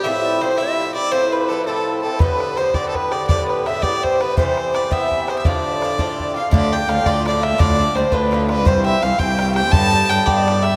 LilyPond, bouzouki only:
\new Staff \with { instrumentName = "Bouzouki" } { \time 6/8 \key d \dorian \tempo 4. = 111 <a, f c' e'>4 <a, f c' e'>8 <a, f c' e'>4 <f c' e'>8 | <a, f c' e'>4 <a, f c' e'>8 <a, f c' e'>4 <f c' e'>8 | <a, d b g'>4 <a, d b g'>8 <a, d b g'>4 <d b g'>8 | <a, d b g'>4 <a, d b g'>8 <a, d b g'>4 <d b g'>8 |
<c e g'>4 <c e b g'>8 <c e b g'>4 <e b g'>8 | <a, d d' f'>4 <a, d d' f'>8 <a, d d' f'>4 <d d' f'>8 | <a, d d' f'>8 <d d' f'>8 <a, d d' f'>8 <a, d d' f'>8 <a, d d' f'>8 <d d' f'>8 | <a, d d' f'>8 <d d' f'>8 <a, d d' f'>8 <a, d d' f'>8 <a, d d' f'>8 <d d' f'>8 |
<g, e c' g'>8 <e c' g'>8 <g, e c' g'>8 <g, e c' g'>8 <g, e c' g'>8 <e c' g'>8 | <a, d b g'>8 <d b g'>8 <a, d b g'>8 <a, d b g'>8 <a, d b g'>8 <d b g'>8 | }